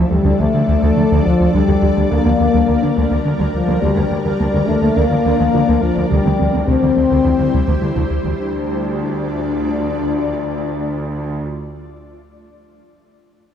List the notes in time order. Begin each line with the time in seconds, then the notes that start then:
Already playing: F3 D4 A4 D5
0.10 D2 F3 G3
0.25 D2 D3
0.39 D2 F3 A3
0.54 D2 D3 A3
0.68 D2 D3
0.83 D2 F3
0.97 D2 D3 A3
1.12 D2 D3
1.24 D2 F3
1.40 D2 F3
1.53 D2 G3 A#4
1.68 D2 G4
1.82 D2 G4
1.97 D2 G4
2.10 D2 G3 A#3
2.25 D2 A#3
2.39 D2 A#3
2.54 D2 G3
2.68 D2 A#3
2.83 D2 D3 D4
2.97 D2 G3
3.11 D2 A#3
3.25 D2 D3 D4
3.39 D2 G3
3.54 D2 F3
3.68 D2 A#3
3.80 D2 F3 G3 A#3 D4 D5
3.97 D2 A#4
4.11 D2 A#4
4.25 D2 A#4
4.40 D2 A#3
4.54 D2 D4
4.67 D2 A3 D4
4.82 D2 A#3
4.96 D2 A#3 D4
5.11 D2 D3 F4
5.25 D2 A#3
5.39 D2 D4
5.54 D2 D3 F4
5.68 D2 A#3
5.82 D2 F3
5.96 D2 D4
6.09 D2 C3 G3 E4 G4 C5
6.25 D2 C4
6.39 D2 C4
6.53 D2 C4
6.66 D2 C3 C4
6.82 D2 E3
6.96 D2 E3
7.10 D2 C3
7.25 D2 E3
7.39 D2 D3 G3
7.53 D2 C3
7.68 D2 E3
7.82 D2 D3 G3
7.96 D2 C3
8.11 D2
8.24 D2 E3
8.38 D2 A3 D4 F4 D5